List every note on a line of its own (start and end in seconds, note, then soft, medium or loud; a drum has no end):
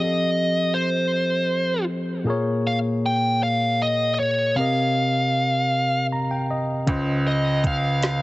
0.00 2.21 F3 medium
0.00 2.22 C4 medium
0.00 2.22 G4 medium
0.00 0.75 D#5 loud
0.00 2.24 D#5 medium
0.04 2.26 A4 medium
0.74 1.84 C5 medium
2.24 4.52 A#2 medium
2.24 4.52 A#3 medium
2.24 4.53 G#4 medium
2.24 4.54 A#4 medium
2.30 4.54 C#5 medium
2.67 2.77 F5 medium
3.06 3.40 G5 loud
3.43 3.82 F5 loud
3.82 4.13 D#5 medium
4.14 4.19 D#5 medium
4.19 4.58 C#5 medium
4.56 6.83 C3 medium
4.56 6.83 C4 medium
4.56 6.84 G4 medium
4.56 6.85 A#4 medium
4.56 6.06 F5 medium
4.61 6.49 D#5 medium
6.12 6.29 A#5 medium
6.31 6.48 G5 medium
6.51 6.85 D#5 medium
6.86 8.22 C#2 loud
6.86 8.22 C#3 medium
6.86 8.22 C#4 medium
6.86 8.22 F4 medium
6.86 kick loud
6.86 closed hi-hat medium
6.90 8.22 C5 medium
6.90 8.22 D#5 medium
7.28 7.62 D#5 medium
7.64 8.22 F5 medium
7.64 kick medium
7.64 closed hi-hat medium
8.03 snare loud
8.03 closed hi-hat medium